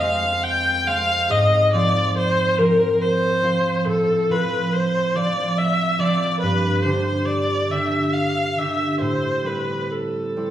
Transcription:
Already playing: harp F2
0.00 harp G#3 C4, viola F5
0.43 viola G5
0.87 harp G#3 C4, viola F5
1.29 harp G#2, viola D#5
1.73 harp F3 C4 F4, viola D5
2.17 viola C5
2.58 harp F3 C4 F4, viola A#4
3.01 viola C5
3.43 harp F3 C4 F4
3.86 harp A2, viola A4
4.30 harp F3 C4 F4, viola B4
4.73 viola C5
5.15 harp F3 C4 F4, viola D5
5.58 viola E5
5.99 harp F3 C4, viola D5
6.05 harp F4
6.40 harp G2, viola B4
6.82 harp D3 D4, viola C5
6.86 harp G4
7.26 viola D5
7.71 harp D3 D4 G4, viola E5
8.13 viola F5
8.58 harp D3 D4 G4, viola E5
9.01 harp A2, viola C5
9.44 harp G3 C4 E4, viola B4
9.91 viola A4
10.36 harp G3 C4 E4

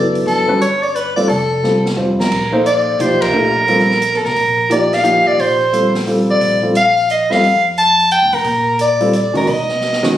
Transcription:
Already playing: upright bass F#1, grand piano F#3 B3 E4 A4, soprano saxophone D5
0.15 open hi-hat
0.26 upright bass G1, soprano saxophone A4, open hi-hat
0.48 grand piano G3 C#4 F#4 B4
0.61 soprano saxophone C#5, closed hi-hat
0.83 soprano saxophone D5, open hi-hat
0.95 soprano saxophone B4, closed hi-hat
1.16 grand piano G3 C4 F4 A4, soprano saxophone D5, open hi-hat
1.29 upright bass F1, soprano saxophone A4, open hi-hat
1.63 grand piano G3 C4 F4 A4, snare
1.86 snare
1.96 upright bass F2, grand piano G3 C4 F4 C5, floor tom
2.20 soprano saxophone A#4, snare
2.32 upright bass A#1, kick, crash
2.52 grand piano A#3 D#4 A4 C5
2.66 soprano saxophone D5, closed hi-hat
2.99 upright bass B1, grand piano F3 A#3 D#4 G4, soprano saxophone C5, closed hi-hat
3.22 soprano saxophone A#4, kick, ride
3.33 upright bass A#1, grand piano A3 D4 G4 A#4
3.68 grand piano G3 C4 F4 A4, open hi-hat
3.79 snare
3.91 snare
4.02 closed hi-hat
4.14 soprano saxophone A4, snare
4.23 upright bass B1, soprano saxophone A#4, snare
4.35 upright bass A#1, open hi-hat
4.69 grand piano F3 A#3 D#4 G4, soprano saxophone D5, closed hi-hat
4.93 soprano saxophone F5, snare, open hi-hat
5.03 grand piano F3 A#3 D#4 G4, closed hi-hat
5.26 upright bass A1, soprano saxophone D5
5.38 upright bass A#1, soprano saxophone C5, open hi-hat
5.72 grand piano G3 C4 F4 A4, closed hi-hat
5.95 snare, open hi-hat
6.07 grand piano G3 C4 F4 A4, open hi-hat
6.31 soprano saxophone D5
6.41 upright bass A#1, open hi-hat
6.62 grand piano G3 C4 F4 A4
6.75 soprano saxophone F5, closed hi-hat
6.97 open hi-hat
7.10 soprano saxophone D#5, closed hi-hat
7.30 upright bass F2, grand piano G3 C4 F4 A4, soprano saxophone F5, snare
7.42 upright bass F2, open hi-hat
7.78 soprano saxophone A5, closed hi-hat
7.99 open hi-hat
8.11 soprano saxophone G5, closed hi-hat
8.22 upright bass D2
8.33 upright bass A1, soprano saxophone A#4, open hi-hat
8.44 upright bass A#2, open hi-hat
8.79 soprano saxophone D5, closed hi-hat
9.00 grand piano G3 C4 F4 A4, open hi-hat
9.13 soprano saxophone D5, closed hi-hat
9.33 grand piano D#3 G#3 C#4 F#4, soprano saxophone A#4, open hi-hat
9.47 upright bass B2, soprano saxophone D#5, open hi-hat
9.69 snare
9.81 snare
9.93 snare
10.03 grand piano D#3 G#3 C#4 F#4, snare

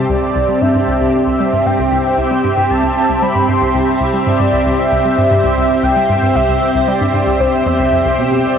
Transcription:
Already playing: analog synth pad C4 G4 D5 A5
0.09 synth arpeggio sound C2, soft synth lead D5, synth texture G5
0.36 synth arpeggio sound C2
0.44 analog synth pad C5
0.49 synth arpeggio sound G3
0.62 synth arpeggio sound G2, soft synth lead E5
0.75 synth arpeggio sound G2
0.88 synth arpeggio sound C2
1.01 synth arpeggio sound C2
1.12 analog synth pad E5, soft synth lead E5
1.27 synth arpeggio sound C2
1.40 synth arpeggio sound G3
1.53 synth arpeggio sound G2
1.66 synth arpeggio sound G2, soft synth lead G5
1.79 synth arpeggio sound C2
1.92 synth arpeggio sound C2
2.18 synth arpeggio sound C2, soft synth lead G5
2.31 synth arpeggio sound G3
2.44 synth arpeggio sound G2
2.57 synth arpeggio sound G2
2.70 synth arpeggio sound C2, soft synth lead A5
2.83 synth arpeggio sound C2
3.09 synth arpeggio sound C2
3.22 synth arpeggio sound G3, soft synth lead B5
3.36 synth arpeggio sound G2
3.49 synth arpeggio sound G2, soft synth lead C6
3.62 synth arpeggio sound C2
3.75 synth arpeggio sound C2
4.01 synth arpeggio sound C2
4.14 synth arpeggio sound G3
4.27 synth arpeggio sound G2, soft synth lead D5
4.40 synth arpeggio sound G2
4.53 synth arpeggio sound C2
4.66 synth arpeggio sound C2
4.79 soft synth lead E5
4.92 synth arpeggio sound C2
5.05 synth arpeggio sound G3
5.18 synth arpeggio sound G2
5.31 synth arpeggio sound G2, soft synth lead E5
5.44 synth arpeggio sound C2
5.57 synth arpeggio sound C2
5.83 synth arpeggio sound C2, soft synth lead G5
5.96 synth arpeggio sound G3
6.10 synth arpeggio sound G2
6.22 synth arpeggio sound G2
6.35 synth arpeggio sound C2, soft synth lead E5
6.49 synth arpeggio sound C2
6.75 synth arpeggio sound C2
6.88 synth arpeggio sound G3, soft synth lead D5
7.01 synth arpeggio sound G2
7.14 synth arpeggio sound G2
7.27 synth arpeggio sound C2
7.40 synth arpeggio sound C2, soft synth lead C5
7.66 synth arpeggio sound E2, soft synth lead E5
7.79 synth arpeggio sound C2
7.92 synth arpeggio sound F2
8.05 synth arpeggio sound C2
8.18 synth arpeggio sound B2
8.31 synth arpeggio sound B2
8.45 soft synth lead D5

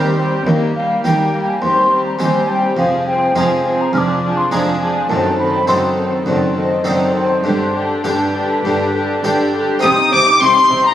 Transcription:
Already playing: harpsichord D#2 C4 G4, cello section D#2, double bass section D#2, viola section G3, violin section C4 G4, flute A#4
0.17 viola section G3, violin section C4 G4, flute C5
0.45 harpsichord D#2, double bass section D#2, cello section D#2, viola section G3, violin section A#3 G4, flute D#5
0.75 viola section G3, violin section A#3 G4, flute F5
1.03 harpsichord D#2 A#3 G4, double bass section D#2, cello section D#2, viola section G3, violin section A#3 G4, flute G5
1.33 viola section G3, violin section A#3 G4
1.48 flute G#5
1.61 harpsichord D#2, cello section D#2, double bass section D#2, viola section G3, violin section C4 G4, flute C6
1.90 viola section G3, violin section C4 G4
2.06 flute A#5
2.19 harpsichord D#2 C4 G4, double bass section D#2, cello section D#2, viola section G3, violin section C4 G4, flute G#5
2.48 viola section G3, violin section C4 G4, flute G5 A5
2.77 double bass section F1, harpsichord F2, cello section F2, viola section F3, violin section C4 G#4, flute F5
3.06 viola section F3, violin section C4 G#4, flute G5
3.35 double bass section F1, harpsichord F2 G#3 C4 F4, cello section F2, viola section F3, violin section C4 G#4, flute A#5
3.40 flute G#5
3.65 viola section F3, violin section C4 G#4
3.81 flute A#5
3.93 double bass section F1, harpsichord F2, cello section F2, viola section F3, violin section D4 G#4, flute F6
3.98 flute D6
4.23 viola section F3, violin section D4 G#4
4.37 flute C6
4.51 double bass section F1, harpsichord F2 G#3 D4 G#4, cello section F2, viola section F3, violin section D4 G#4, flute A#5
4.80 viola section F3, violin section D4 G#4, flute G#5
5.09 double bass section F#1, harpsichord F#2, cello section F#2, viola section D#3, violin section C4 A4, flute A5
5.38 viola section D#3, violin section C4 A4, flute B5
5.67 double bass section F#1, harpsichord F#2 C4 D#4 A4, cello section F#2, viola section D#3, violin section C4 A4, flute C6
5.96 viola section D#3, violin section C4 A4, flute C5
6.25 double bass section F#1, harpsichord F#2, cello section F#2, viola section D#3, violin section C4 A4, flute D5
6.55 viola section D#3, violin section C4 A4, flute D#5
6.84 double bass section F#1, harpsichord F#2 C4 D#4 A4, cello section F#2, viola section D#3, violin section C4 A4, flute D5
7.14 viola section D#3, violin section C4 A4, flute C5
7.44 double bass section G1, harpsichord G2, cello section G2, viola section D3, violin section D4 G4, flute C5
7.74 viola section D3, violin section D4 G4
8.03 double bass section G1, harpsichord G2 D4 G4, cello section G2, viola section D3, violin section D4 G4, flute B4
8.34 viola section D3, violin section D4 G4
8.64 double bass section G1, cello section G2, harpsichord G2, viola section D3, violin section D4 G4
8.94 viola section D3, violin section D4 G4
9.23 double bass section G1, harpsichord G2 D4 G4, cello section G2, viola section D3, violin section D4 G4
9.52 viola section D3, violin section D4 G4
9.79 double bass section C2, harpsichord C4 D#4 G4, violin section D#6
9.83 cello section C3, harpsichord C3, viola section C4, flute D#6, violin section D#6
9.98 viola section D#4
10.11 double bass section C2, cello section C3, harpsichord C3, viola section C4, violin section D6, flute D6
10.27 viola section D#4
10.41 double bass section C2, cello section C3, harpsichord C3, viola section C4, violin section C6, flute D6
10.46 flute C6
10.56 viola section D#4
10.70 double bass section C2, cello section C3, harpsichord C3, viola section C4
10.85 viola section D#4, violin section A#5, flute A#5

